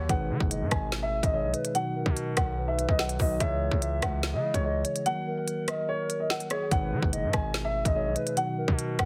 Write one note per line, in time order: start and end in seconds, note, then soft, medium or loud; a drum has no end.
0.00 0.09 D#3 medium
0.00 0.11 F#3 medium
0.00 0.11 A#3 medium
0.00 0.11 F#4 medium
0.00 0.11 A#4 medium
0.09 0.32 G#1 loud
0.09 1.31 B2 medium
0.09 1.31 D#3 medium
0.09 1.31 G#3 medium
0.09 1.31 D#4 medium
0.09 1.32 G#4 medium
0.09 0.48 B4 loud
0.09 0.68 F#5 medium
0.09 kick loud
0.09 closed hi-hat medium
0.30 0.40 D#3 loud
0.40 0.63 F#1 loud
0.40 kick loud
0.51 0.90 D#5 medium
0.51 closed hi-hat medium
0.61 0.71 G#2 loud
0.71 1.21 G#1 loud
0.71 1.01 G#5 medium
0.71 kick medium
0.71 cross-stick loud
0.71 closed hi-hat medium
0.92 snare loud
0.92 closed hi-hat medium
1.03 1.19 E5 medium
1.23 1.45 G#1 loud
1.23 1.31 D#5 medium
1.23 kick medium
1.23 closed hi-hat medium
1.32 1.73 B2 medium
1.32 1.73 D#3 soft
1.32 1.75 G#3 soft
1.32 1.74 D#4 medium
1.32 1.75 G#4 medium
1.32 1.53 C#5 medium
1.32 1.50 D#5 medium
1.44 1.54 B1 loud
1.54 1.74 B4 medium
1.54 closed hi-hat medium
1.65 closed hi-hat medium
1.74 3.16 B2 medium
1.74 3.17 D#3 medium
1.74 3.17 F#3 medium
1.74 3.17 D#4 medium
1.74 3.17 F#4 medium
1.74 2.33 F#5 medium
1.74 closed hi-hat medium
1.96 2.54 A#4 medium
2.06 2.36 B2 loud
2.06 kick loud
2.17 closed hi-hat medium
2.37 2.87 B1 loud
2.37 2.66 F#5 medium
2.37 kick loud
2.37 cross-stick loud
2.37 closed hi-hat medium
2.58 3.36 B4 medium
2.68 2.84 E5 medium
2.79 closed hi-hat medium
2.89 3.18 B1 loud
2.89 2.97 D#5 medium
2.89 kick medium
2.99 3.15 F#5 medium
2.99 snare loud
3.09 closed hi-hat medium
3.19 3.40 B1 loud
3.19 3.40 B2 medium
3.19 3.40 D#3 medium
3.19 3.40 F#3 medium
3.19 3.41 D#4 soft
3.19 3.41 F#4 medium
3.19 3.36 D#5 medium
3.19 kick loud
3.19 open hi-hat medium
3.39 3.70 C#2 loud
3.39 4.41 C#3 medium
3.39 4.41 E3 medium
3.39 4.42 G#3 medium
3.39 4.42 G#4 medium
3.39 3.79 C#5 loud
3.39 3.99 E5 loud
3.39 kick loud
3.39 closed hi-hat medium
3.71 4.01 C#2 loud
3.71 kick loud
3.82 4.21 E5 medium
3.82 closed hi-hat medium
4.02 4.35 C#2 loud
4.02 4.32 F#5 medium
4.02 kick medium
4.02 cross-stick loud
4.02 closed hi-hat medium
4.23 snare loud
4.23 closed hi-hat medium
4.34 4.53 C#3 loud
4.34 4.50 D#5 medium
4.44 5.06 C#3 medium
4.44 5.06 E3 soft
4.44 5.06 G#3 medium
4.44 5.06 E4 soft
4.44 5.06 G#4 medium
4.54 4.84 C#2 loud
4.54 4.62 C#5 medium
4.54 kick medium
4.54 closed hi-hat medium
4.64 4.81 C#5 medium
4.64 4.84 D#5 medium
4.85 5.05 C#5 medium
4.85 closed hi-hat medium
4.96 closed hi-hat medium
5.05 6.68 D#3 medium
5.05 6.68 F#3 medium
5.05 6.68 A#3 medium
5.05 6.68 F#4 medium
5.05 6.69 A#4 medium
5.05 5.64 F#5 loud
5.05 closed hi-hat medium
5.27 6.47 A#4 medium
5.48 closed hi-hat medium
5.68 5.84 D#5 medium
5.68 cross-stick loud
5.68 closed hi-hat medium
5.89 6.18 C#5 medium
6.10 closed hi-hat medium
6.20 6.28 D#5 medium
6.30 6.46 F#5 medium
6.30 snare loud
6.40 closed hi-hat medium
6.50 6.70 G#4 medium
6.50 6.67 C#5 medium
6.50 cross-stick medium
6.50 closed hi-hat medium
6.71 6.94 G#1 loud
6.71 7.93 B2 medium
6.71 7.93 D#3 medium
6.71 7.93 G#3 medium
6.71 7.93 D#4 medium
6.71 7.94 G#4 medium
6.71 7.10 B4 loud
6.71 7.30 F#5 medium
6.71 kick loud
6.71 closed hi-hat medium
6.92 7.02 D#3 loud
7.02 7.25 F#1 loud
7.02 kick loud
7.13 7.52 D#5 medium
7.13 closed hi-hat medium
7.23 7.33 G#2 loud
7.33 7.83 G#1 loud
7.33 7.63 G#5 medium
7.33 kick medium
7.33 cross-stick loud
7.33 closed hi-hat medium
7.54 snare loud
7.54 closed hi-hat medium
7.65 7.81 E5 medium
7.85 8.07 G#1 loud
7.85 7.93 D#5 medium
7.85 kick loud
7.85 closed hi-hat medium
7.94 8.35 B2 medium
7.94 8.35 D#3 soft
7.94 8.37 G#3 soft
7.94 8.36 D#4 medium
7.94 8.37 G#4 medium
7.94 8.15 C#5 medium
7.94 8.12 D#5 medium
8.06 8.16 B1 loud
8.16 8.36 B4 medium
8.16 closed hi-hat medium
8.27 closed hi-hat medium
8.36 9.05 B2 medium
8.36 9.05 D#3 medium
8.36 9.05 F#3 medium
8.36 9.05 D#4 medium
8.36 9.05 F#4 medium
8.36 8.95 F#5 medium
8.36 closed hi-hat medium
8.58 9.05 A#4 medium
8.68 8.98 B2 loud
8.68 kick loud
8.79 closed hi-hat medium
8.99 9.05 B1 loud
8.99 9.05 F#5 medium
8.99 kick medium
8.99 cross-stick loud
8.99 closed hi-hat medium